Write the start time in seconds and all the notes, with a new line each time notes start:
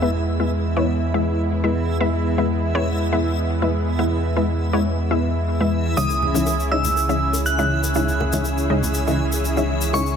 Already playing: E2 E3 G#3 B3 E4 E5
0.02 G#3 B3 E4 B4 E5
0.40 G#3 B3 E4 B4 E5
0.77 G#3 B3 E4 B4 C#5
1.14 G#3 B3 E4 B4 E5
1.64 G#3 B3 E4 B4 E5
2.00 G#3 B3 E4 B4 E5
2.38 G#3 B3 E4 B4 E5
2.75 G#3 B3 E4 B4 C#5
3.12 G#3 B3 E4 B4 E5
3.62 G#3 B3 E4 B4 E5
3.99 G#3 B3 E4 B4 E5
4.36 G#3 B3 E4 B4 E5
4.73 G#3 B3 E4 B4 C#5
5.11 G#3 B3 E4 B4 E5
5.60 G#3 B3 E4 B4 E5
5.97 C#2 C#3 G#3 C#4 D#4 E4 G#4 C#5 E5 D#6, shaker
6.10 high bongo, shaker
6.22 low conga
6.34 C#3 G#3 D#4 E4 C#5 E5, high conga, shaker
6.46 high bongo, shaker
6.60 shaker
6.71 C#3 G#3 D#4 E4 C#5 D#5 E6, high bongo
6.84 low conga, shaker
6.96 high bongo, shaker
7.09 C#3 G#3 E4 C#5 D#5 E5, shaker
7.33 high bongo, shaker
7.46 F#6, shaker
7.58 C#3 G#3 D#4 E4 C#5 E5, high bongo, shaker
7.83 high bongo, shaker
7.94 C#3 G#3 D#4 E4 C#5 E5, shaker
8.08 high conga, shaker
8.20 high bongo, low conga
8.33 C#3 G#3 D#4 E4 C#5 E5, high conga, shaker
8.45 high bongo, shaker
8.58 shaker
8.70 C#3 G#3 D#4 E4 C#5 D#5, high bongo
8.83 low conga, shaker
8.94 shaker
9.07 C#3 G#3 E4 C#5 D#5 E5, high bongo, shaker
9.32 high bongo, shaker
9.45 shaker
9.57 C#3 G#3 D#4 E4 C#5 E5, high bongo, shaker
9.81 shaker
9.93 C#3 G#3 D#4 E4 C#5 E5 C#6, high bongo, shaker
10.06 shaker